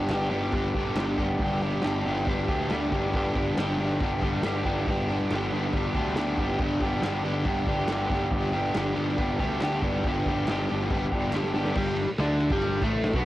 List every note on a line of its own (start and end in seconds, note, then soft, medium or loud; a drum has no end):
0.00 0.11 B3 medium
0.00 0.12 D4 medium
0.00 0.12 G4 medium
0.09 0.29 G1 loud
0.09 0.78 G2 medium
0.09 0.54 D3 medium
0.09 0.34 G3 medium
0.09 0.33 B3 loud
0.09 0.32 D4 loud
0.09 0.30 G4 loud
0.09 snare medium
0.09 clap loud
0.09 open hi-hat medium
0.30 0.51 G1 medium
0.30 0.54 B3 medium
0.30 0.56 D4 medium
0.30 0.57 G4 medium
0.30 open hi-hat medium
0.35 0.53 G3 medium
0.52 0.72 G1 medium
0.52 0.77 G3 medium
0.52 0.76 B3 medium
0.52 kick loud
0.52 open hi-hat medium
0.56 0.76 D4 medium
0.56 0.75 G4 medium
0.74 0.94 G1 loud
0.74 1.20 D3 medium
0.74 0.97 G3 medium
0.74 0.98 B3 medium
0.74 0.98 D4 medium
0.74 1.00 G4 medium
0.74 kick medium
0.74 open hi-hat medium
0.79 1.40 G2 medium
0.95 1.15 G1 medium
0.95 1.22 G3 medium
0.95 1.20 B3 medium
0.95 1.19 D4 medium
0.95 snare loud
0.95 clap loud
0.95 open hi-hat medium
1.00 1.18 G4 medium
1.18 1.37 G1 medium
1.18 1.42 B3 medium
1.18 1.43 D4 medium
1.18 1.43 G4 medium
1.18 kick medium
1.18 open hi-hat medium
1.22 1.41 G3 medium
1.38 1.77 G1 loud
1.38 1.83 G2 loud
1.38 1.84 D3 loud
1.38 1.65 G3 loud
1.38 1.64 B3 medium
1.38 kick loud
1.38 open hi-hat medium
1.43 1.63 D4 medium
1.43 1.62 G4 loud
1.61 1.85 G3 medium
1.61 1.86 B3 medium
1.61 1.86 D4 medium
1.61 1.87 G4 medium
1.61 open hi-hat medium
1.81 2.02 G1 medium
1.81 2.51 G2 loud
1.81 2.28 D3 loud
1.81 snare loud
1.81 clap loud
1.81 open hi-hat medium
1.86 2.09 G3 medium
1.86 2.08 B3 loud
1.86 2.07 D4 loud
1.86 2.06 G4 loud
2.05 2.24 G1 medium
2.05 2.27 B3 medium
2.05 2.29 D4 medium
2.05 2.30 G4 medium
2.05 open hi-hat medium
2.10 2.26 G3 medium
2.16 snare soft
2.26 2.45 G1 loud
2.26 2.50 G3 medium
2.26 2.49 B3 medium
2.26 2.48 D4 medium
2.26 2.48 G4 medium
2.26 kick loud
2.26 open hi-hat medium
2.48 2.67 D2 medium
2.48 2.93 D3 medium
2.48 2.70 G3 medium
2.48 2.72 B3 medium
2.48 2.73 D4 medium
2.48 2.73 G4 medium
2.48 kick medium
2.48 open hi-hat medium
2.52 3.13 G2 medium
2.70 2.90 D2 medium
2.70 2.95 G3 medium
2.70 2.94 B3 medium
2.70 2.94 D4 medium
2.70 2.92 G4 medium
2.70 snare loud
2.70 clap loud
2.70 open hi-hat medium
2.91 3.10 G1 medium
2.91 3.15 B3 medium
2.91 3.16 D4 medium
2.91 3.16 G4 medium
2.91 kick medium
2.91 open hi-hat medium
2.96 3.15 G3 medium
3.13 3.32 G1 medium
3.13 3.57 G2 loud
3.13 3.56 D3 loud
3.13 3.38 G3 loud
3.13 3.37 B3 loud
3.13 3.37 D4 loud
3.13 3.35 G4 loud
3.13 kick loud
3.13 open hi-hat medium
3.35 3.54 G1 medium
3.35 3.58 G3 medium
3.35 3.59 B3 medium
3.35 3.59 D4 medium
3.35 3.60 G4 medium
3.35 kick medium
3.35 open hi-hat medium
3.56 3.75 G1 medium
3.56 4.26 G2 medium
3.56 4.01 D3 loud
3.56 3.82 G3 loud
3.56 3.81 B3 loud
3.56 3.80 D4 loud
3.56 snare loud
3.56 clap loud
3.56 open hi-hat medium
3.61 3.79 G4 loud
3.78 3.97 G1 medium
3.78 4.02 B3 medium
3.78 4.03 D4 medium
3.78 4.05 G4 medium
3.78 open hi-hat medium
3.83 4.01 G3 medium
4.00 4.19 G1 loud
4.00 4.25 G3 medium
4.00 4.25 B3 medium
4.00 4.23 D4 medium
4.00 kick loud
4.00 open hi-hat medium
4.05 4.23 G4 medium
4.21 4.41 G1 medium
4.21 4.44 B3 medium
4.21 4.46 D4 medium
4.21 4.47 G4 medium
4.21 kick medium
4.21 open hi-hat medium
4.26 4.87 G2 medium
4.26 4.67 D3 medium
4.26 4.43 G3 medium
4.43 4.62 G1 medium
4.43 4.68 G3 medium
4.43 4.67 B3 medium
4.43 4.66 D4 medium
4.43 snare loud
4.43 clap loud
4.43 open hi-hat medium
4.47 4.65 G4 medium
4.64 4.84 G1 medium
4.64 4.90 B3 medium
4.64 4.90 D4 medium
4.64 4.91 G4 medium
4.64 kick medium
4.64 open hi-hat medium
4.69 4.89 G3 medium
4.87 5.24 G1 medium
4.87 5.32 G2 medium
4.87 5.31 D3 loud
4.87 5.12 G3 loud
4.87 5.11 B3 loud
4.87 kick loud
4.87 open hi-hat medium
4.91 5.10 D4 loud
4.91 5.08 G4 loud
5.09 5.33 G3 medium
5.09 5.34 B3 medium
5.09 5.35 D4 medium
5.09 5.35 G4 medium
5.09 open hi-hat medium
5.30 5.49 G1 medium
5.30 5.98 G2 loud
5.30 5.75 D3 medium
5.30 5.55 G3 loud
5.30 snare loud
5.30 clap loud
5.30 open hi-hat medium
5.34 5.54 B3 loud
5.34 5.53 D4 medium
5.34 5.52 G4 loud
5.52 5.71 G1 medium
5.52 5.74 G3 medium
5.52 5.76 B3 medium
5.52 5.77 D4 medium
5.52 5.78 G4 medium
5.52 open hi-hat medium
5.73 5.92 G1 loud
5.73 5.97 G3 medium
5.73 5.96 B3 medium
5.73 kick loud
5.73 open hi-hat medium
5.77 5.96 D4 medium
5.77 5.94 G4 medium
5.94 6.13 D2 medium
5.94 6.39 D3 medium
5.94 6.17 G3 medium
5.94 6.18 B3 medium
5.94 6.19 D4 medium
5.94 6.20 G4 medium
5.94 kick medium
5.94 open hi-hat medium
5.99 6.59 G2 medium
6.15 6.35 D2 medium
6.15 6.42 G3 medium
6.15 6.41 B3 medium
6.15 snare loud
6.15 clap loud
6.15 open hi-hat medium
6.19 6.40 D4 medium
6.19 6.39 G4 medium
6.37 6.56 G1 medium
6.37 6.62 D4 medium
6.37 6.63 G4 medium
6.37 kick medium
6.37 open hi-hat medium
6.42 6.61 G3 medium
6.42 6.62 B3 medium
6.58 6.78 G1 medium
6.58 7.02 G2 medium
6.58 7.02 D3 medium
6.58 6.85 G3 medium
6.58 6.84 B3 loud
6.58 kick loud
6.58 open hi-hat medium
6.62 6.83 D4 loud
6.62 6.82 G4 loud
6.80 6.99 G1 loud
6.80 7.05 D4 medium
6.80 7.06 G4 medium
6.80 kick medium
6.80 open hi-hat medium
6.84 7.04 G3 medium
6.84 7.05 B3 medium
7.02 7.21 G1 medium
7.02 7.71 G2 medium
7.02 7.46 D3 loud
7.02 7.28 G3 medium
7.02 7.27 B3 loud
7.02 snare medium
7.02 clap loud
7.02 open hi-hat medium
7.06 7.26 D4 loud
7.06 7.24 G4 loud
7.23 7.42 G1 medium
7.23 7.47 D4 medium
7.23 7.48 G4 medium
7.23 open hi-hat medium
7.28 7.45 G3 medium
7.28 7.46 B3 medium
7.44 7.64 G1 loud
7.44 7.69 G3 medium
7.44 7.69 B3 medium
7.44 7.68 D4 medium
7.44 7.67 G4 medium
7.44 kick loud
7.44 open hi-hat medium
7.66 7.85 G1 medium
7.66 7.89 G3 medium
7.66 7.90 B3 medium
7.66 7.91 D4 loud
7.66 7.92 G4 loud
7.66 kick medium
7.66 open hi-hat medium
7.70 8.30 G2 medium
7.70 8.12 D3 medium
7.87 8.07 G1 medium
7.87 8.13 G3 medium
7.87 8.11 B3 medium
7.87 snare loud
7.87 clap loud
7.87 open hi-hat medium
7.92 8.11 D4 medium
7.92 8.09 G4 medium
8.09 8.29 G1 medium
8.09 8.33 B3 medium
8.09 8.33 D4 medium
8.09 8.33 G4 medium
8.09 kick medium
8.09 open hi-hat medium
8.14 8.32 G3 medium
8.30 8.68 G1 medium
8.30 8.74 G2 loud
8.30 8.74 D3 medium
8.30 8.55 G3 loud
8.30 8.54 B3 medium
8.30 8.53 D4 loud
8.30 8.52 G4 loud
8.30 kick loud
8.30 open hi-hat medium
8.52 8.76 G3 medium
8.52 8.76 B3 medium
8.52 8.77 D4 medium
8.52 8.78 G4 medium
8.52 open hi-hat medium
8.74 8.94 G1 medium
8.74 9.43 G2 loud
8.74 9.18 D3 loud
8.74 8.99 G3 loud
8.74 8.98 B3 loud
8.74 8.96 D4 loud
8.74 snare loud
8.74 clap loud
8.74 open hi-hat medium
8.78 8.95 G4 loud
8.95 9.15 G1 medium
8.95 9.17 G3 medium
8.95 9.18 B3 medium
8.95 9.19 D4 medium
8.95 9.21 G4 medium
8.95 open hi-hat medium
9.09 snare soft
9.17 9.36 G1 loud
9.17 9.42 G3 medium
9.17 9.41 B3 medium
9.17 9.41 D4 medium
9.17 9.40 G4 medium
9.17 kick loud
9.17 open hi-hat medium
9.39 9.58 D2 medium
9.39 10.05 G2 medium
9.39 9.60 G3 medium
9.39 9.61 B3 medium
9.39 9.62 D4 medium
9.39 9.63 G4 medium
9.39 kick medium
9.39 open hi-hat medium
9.43 9.84 D3 medium
9.60 9.79 D2 medium
9.60 9.85 G3 medium
9.60 9.84 B3 medium
9.60 9.83 D4 medium
9.60 9.82 G4 medium
9.60 snare loud
9.60 clap loud
9.60 open hi-hat medium
9.82 10.00 G1 medium
9.82 10.06 B3 medium
9.82 10.07 D4 medium
9.82 10.08 G4 medium
9.82 kick medium
9.82 open hi-hat medium
9.86 10.05 G3 medium
10.04 10.22 G1 medium
10.04 10.46 G2 medium
10.04 10.47 D3 loud
10.04 10.29 G3 medium
10.04 10.28 B3 medium
10.04 kick loud
10.04 open hi-hat medium
10.08 10.28 D4 loud
10.08 10.26 G4 loud
10.26 10.44 G1 medium
10.26 10.48 B3 medium
10.26 10.49 D4 medium
10.26 10.50 G4 medium
10.26 kick medium
10.26 open hi-hat medium
10.30 10.48 G3 medium
10.47 10.66 G1 medium
10.47 10.90 G2 medium
10.47 10.90 D3 medium
10.47 10.73 G3 loud
10.47 10.72 B3 medium
10.47 10.71 D4 loud
10.47 10.69 G4 medium
10.47 snare loud
10.47 clap medium
10.47 open hi-hat medium
10.69 10.88 G1 medium
10.69 10.91 B3 medium
10.69 10.93 D4 medium
10.69 10.93 G4 medium
10.69 open hi-hat medium
10.74 10.90 G3 medium
10.81 snare soft
10.90 11.08 G1 medium
10.90 11.14 G3 medium
10.90 11.13 B3 medium
10.90 kick loud
10.90 open hi-hat medium
10.94 11.12 D4 medium
10.94 11.11 G4 medium
11.12 11.30 G1 loud
11.12 11.56 D3 medium
11.12 11.32 G3 medium
11.12 11.33 B3 medium
11.12 11.35 D4 medium
11.12 11.35 G4 medium
11.12 kick medium
11.16 11.56 G2 medium
11.33 11.51 G1 medium
11.33 11.56 G3 medium
11.33 11.55 B3 medium
11.33 11.54 D4 medium
11.33 11.53 G4 medium
11.33 snare medium
11.33 clap loud
11.43 snare medium
11.54 11.72 G1 medium
11.54 11.76 G3 medium
11.54 11.75 B3 medium
11.54 11.75 D4 medium
11.54 11.74 G4 medium
11.54 snare medium
11.65 snare medium
11.75 12.05 G1 medium
11.75 12.07 G2 loud
11.75 12.08 G3 loud
11.75 kick loud
11.75 crash loud
11.97 ride medium
12.08 muted picked electric bass stroke soft
12.08 muted overdriven electric guitar stroke medium
12.18 12.48 D2 loud
12.18 12.50 D3 loud
12.18 12.51 D4 loud
12.18 snare loud
12.18 ride medium
12.40 ride medium
12.50 12.80 G1 medium
12.50 12.82 G2 medium
12.50 12.82 G3 loud
12.50 kick loud
12.62 ride loud
12.81 13.11 A1 loud
12.81 13.14 A2 medium
12.81 13.14 A3 loud
12.81 kick loud
12.81 ride medium
13.04 snare loud
13.04 ride medium
13.14 13.24 B1 loud
13.14 13.25 B2 medium
13.14 13.25 B3 medium
13.14 kick loud